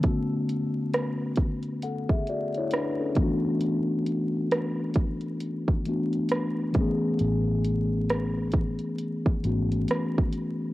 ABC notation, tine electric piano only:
X:1
M:4/4
L:1/16
Q:"Swing 16ths" 1/4=67
K:A
V:1 name="Tine electric piano"
z8 [Af] [Ge] [Fd] [Ec] [DB] [CA]2 z | z16 | z16 |]
V:2 name="Tine electric piano"
[D,A,B,CF]12- [D,A,B,CF]2 [E,A,B,DF]2- | [E,A,B,DF]8- [E,A,B,DF]2 [E,A,B,DF]4 [E,A,B,CG]2- | [E,A,B,CG]8- [E,A,B,CG]2 [E,A,B,CF]6 |]